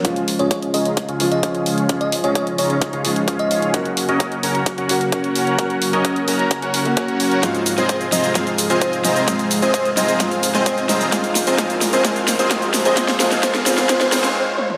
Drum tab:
HH |xxoxxxoxxxoxxxox|xxoxxxoxxxoxxxox|xxoxxxoxxxoxxxox|xxoxxxoxxxoxxxox|
SH |----------------|----------------|----------------|----------------|
SD |----------------|----------------|----------------|----------------|
T1 |----------------|----------------|----------------|----------------|
T2 |----------------|----------------|----------------|----------------|
BD |o---o---o---o---|o---o---o---o---|o---o---o---o---|o---o---o---o---|

HH |xxoxxxoxxxoxxxox|xxoxxxoxxxoxxxox|xxoxxxoxxxoxxxox|xooxxxoxxxox----|
SH |xxxxxxxxxxxxxxxx|xxxxxxxxxxxxxxxx|xxxxxxxxxxxxxxxx|xxxxxxxxxxxx----|
SD |o--o--o-o-----o-|o-----o-o--o--o-|o-o-o-o-o-o-o-o-|oooooooooooo----|
T1 |----------------|----------------|----------------|--------------o-|
T2 |----------------|----------------|----------------|---------------o|
BD |o---o---o---o---|o---o---o---o---|o---o---o---o---|o---o---o-------|